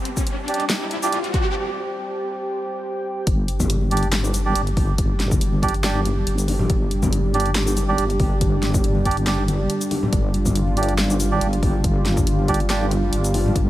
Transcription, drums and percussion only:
0.05 closed hi-hat medium
0.17 kick medium
0.17 shaker medium
0.27 closed hi-hat medium
0.48 closed hi-hat medium
0.54 closed hi-hat medium
0.60 closed hi-hat soft
0.70 snare loud
0.70 closed hi-hat medium
0.91 closed hi-hat medium
1.03 shaker medium
1.13 closed hi-hat medium
1.24 closed hi-hat soft
1.34 kick loud
1.34 closed hi-hat medium
3.27 kick loud
3.27 closed hi-hat medium
3.48 closed hi-hat medium
3.60 kick medium
3.60 high conga medium
3.60 low conga medium
3.60 shaker medium
3.70 closed hi-hat medium
3.81 high conga medium
3.91 closed hi-hat medium
3.97 closed hi-hat medium
4.03 closed hi-hat soft
4.13 snare loud
4.13 clap medium
4.13 closed hi-hat medium
4.24 high bongo medium
4.24 shaker medium
4.34 closed hi-hat medium
4.34 high bongo medium
4.34 shaker medium
4.55 closed hi-hat medium
4.67 closed hi-hat soft
4.77 kick loud
4.77 open hi-hat medium
4.77 high conga medium
4.98 kick loud
4.98 closed hi-hat medium
5.20 snare medium
5.20 closed hi-hat medium
5.31 kick loud
5.31 high conga medium
5.31 shaker medium
5.41 closed hi-hat medium
5.53 high conga medium
5.63 kick medium
5.63 closed hi-hat medium
5.69 closed hi-hat medium
5.74 closed hi-hat soft
5.84 snare loud
5.84 clap loud
5.84 closed hi-hat medium
5.95 high bongo medium
6.05 closed hi-hat medium
6.05 high conga medium
6.27 closed hi-hat medium
6.38 closed hi-hat soft
6.38 shaker medium
6.48 open hi-hat medium
6.48 high bongo medium
6.48 high conga medium
6.59 low conga medium
6.70 kick loud
6.70 closed hi-hat medium
6.91 closed hi-hat medium
7.03 kick medium
7.03 high conga medium
7.03 low conga medium
7.03 shaker medium
7.13 closed hi-hat medium
7.24 high conga medium
7.34 closed hi-hat soft
7.40 closed hi-hat medium
7.46 closed hi-hat soft
7.55 snare loud
7.55 clap medium
7.55 closed hi-hat medium
7.67 high bongo medium
7.67 shaker medium
7.77 closed hi-hat medium
7.77 high bongo medium
7.77 shaker medium
7.98 closed hi-hat medium
8.10 closed hi-hat soft
8.20 kick loud
8.20 open hi-hat medium
8.20 high conga medium
8.41 kick loud
8.41 closed hi-hat medium
8.63 snare medium
8.63 closed hi-hat medium
8.74 kick loud
8.74 high conga medium
8.74 shaker medium
8.84 closed hi-hat medium
8.95 high conga medium
9.05 kick medium
9.05 closed hi-hat soft
9.11 closed hi-hat medium
9.17 closed hi-hat soft
9.27 snare loud
9.27 clap medium
9.27 closed hi-hat medium
9.38 high bongo medium
9.48 closed hi-hat medium
9.48 high conga medium
9.70 closed hi-hat medium
9.81 closed hi-hat soft
9.81 shaker medium
9.91 open hi-hat medium
9.91 high bongo medium
9.91 high conga medium
10.03 low conga medium
10.13 kick loud
10.13 closed hi-hat medium
10.34 closed hi-hat medium
10.45 kick medium
10.45 high conga medium
10.45 low conga medium
10.45 shaker medium
10.56 closed hi-hat medium
10.67 high conga medium
10.77 closed hi-hat soft
10.83 closed hi-hat medium
10.89 closed hi-hat soft
10.98 snare loud
10.98 clap medium
10.98 closed hi-hat medium
11.10 high bongo medium
11.10 shaker medium
11.20 closed hi-hat medium
11.20 high bongo medium
11.20 shaker medium
11.41 closed hi-hat medium
11.53 closed hi-hat soft
11.63 kick loud
11.63 open hi-hat medium
11.63 high conga medium
11.84 kick loud
11.84 closed hi-hat medium
12.06 snare medium
12.06 closed hi-hat medium
12.17 kick loud
12.17 high conga medium
12.17 shaker medium
12.27 closed hi-hat medium
12.39 high conga medium
12.48 kick medium
12.48 closed hi-hat medium
12.54 closed hi-hat medium
12.60 closed hi-hat soft
12.70 snare loud
12.70 clap medium
12.70 closed hi-hat medium
12.81 high bongo medium
12.91 closed hi-hat medium
12.91 high conga medium
13.13 closed hi-hat medium
13.24 closed hi-hat soft
13.24 shaker medium
13.34 open hi-hat medium
13.34 high bongo medium
13.34 high conga medium
13.46 low conga medium
13.56 kick loud
13.56 closed hi-hat medium

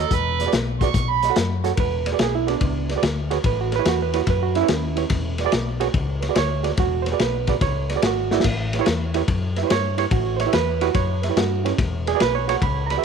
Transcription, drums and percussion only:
0.11 kick loud
0.11 closed hi-hat medium
0.40 snare soft
0.40 closed hi-hat medium
0.52 snare loud
0.52 closed hi-hat medium
0.81 kick medium
0.81 snare soft
0.81 closed hi-hat medium
0.94 kick loud
0.94 snare soft
0.94 closed hi-hat medium
1.23 snare soft
1.23 closed hi-hat medium
1.36 snare loud
1.36 closed hi-hat medium
1.64 snare soft
1.64 closed hi-hat medium
1.77 kick loud
1.77 ride medium
2.06 snare soft
2.06 ride medium
2.19 snare loud
2.19 ride medium
2.48 snare soft
2.48 ride medium
2.61 kick loud
2.61 ride medium
2.89 snare soft
2.89 ride soft
3.03 snare loud
3.03 ride medium
3.31 snare soft
3.31 ride medium
3.44 kick loud
3.44 ride medium
3.72 snare soft
3.72 ride medium
3.85 snare loud
3.85 ride medium
4.14 snare soft
4.14 ride medium
4.27 kick loud
4.27 snare soft
4.27 ride medium
4.55 snare soft
4.55 ride medium
4.68 snare loud
4.68 ride medium
4.97 snare soft
4.97 ride medium
5.10 kick loud
5.10 snare soft
5.10 ride medium
5.38 snare soft
5.38 ride medium
5.52 snare loud
5.52 ride medium
5.81 snare soft
5.81 ride medium
5.94 kick loud
5.94 ride medium
6.22 snare soft
6.22 ride medium
6.35 snare loud
6.35 ride medium
6.64 snare soft
6.64 ride medium
6.77 kick loud
6.77 snare soft
6.77 ride medium
7.06 snare soft
7.06 ride medium
7.19 snare medium
7.19 ride medium
7.47 kick medium
7.47 snare soft
7.47 ride medium
7.61 kick loud
7.61 snare soft
7.61 ride medium
7.90 snare soft
7.90 ride medium
8.02 snare loud
8.02 ride medium
8.31 snare medium
8.40 snare medium
8.40 crash medium
8.40 ride medium
8.44 kick loud
8.44 snare soft
8.73 snare soft
8.73 ride medium
8.86 snare loud
8.86 ride medium
9.14 snare soft
9.14 ride medium
9.28 kick loud
9.28 ride medium
9.56 snare soft
9.56 ride medium
9.70 snare loud
9.70 ride medium
9.98 snare soft
9.98 ride medium
10.11 kick loud
10.11 ride medium
10.40 snare soft
10.40 ride medium
10.53 snare loud
10.53 ride medium
10.81 snare soft
10.81 ride medium
10.94 kick loud
10.94 snare soft
10.94 ride medium
11.23 snare soft
11.23 ride medium
11.37 snare loud
11.37 ride medium
11.66 snare soft
11.66 ride medium
11.78 kick loud
11.78 snare soft
11.78 ride medium
12.07 snare soft
12.07 ride medium
12.20 snare loud
12.20 ride medium
12.49 snare soft
12.49 ride medium
12.62 kick loud
12.62 ride medium
12.90 snare soft
12.90 ride medium

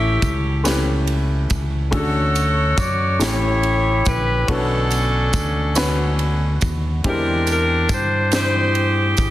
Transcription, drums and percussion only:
0.22 kick medium
0.22 ride soft
0.22 tambourine medium
0.65 snare loud
0.65 ride medium
0.65 tambourine medium
1.07 ride soft
1.50 kick medium
1.50 ride soft
1.50 tambourine soft
1.93 kick loud
1.93 ride medium
2.35 ride soft
2.35 tambourine medium
2.78 kick medium
2.78 ride soft
2.78 tambourine medium
3.20 snare loud
3.20 ride medium
3.20 tambourine loud
3.63 ride soft
4.05 kick loud
4.05 ride soft
4.05 tambourine soft
4.48 kick loud
4.48 ride medium
4.91 ride soft
4.91 tambourine medium
5.33 kick medium
5.33 ride soft
5.33 tambourine medium
5.75 snare loud
5.75 ride medium
5.75 tambourine medium
6.19 ride soft
6.61 kick medium
6.61 ride soft
6.61 tambourine soft
7.04 kick loud
7.04 ride medium
7.47 ride medium
7.47 tambourine medium
7.89 kick medium
7.89 ride soft
7.89 tambourine medium
8.32 snare loud
8.32 ride medium
8.32 tambourine medium
8.75 ride soft
9.17 kick medium
9.17 ride soft
9.17 tambourine soft

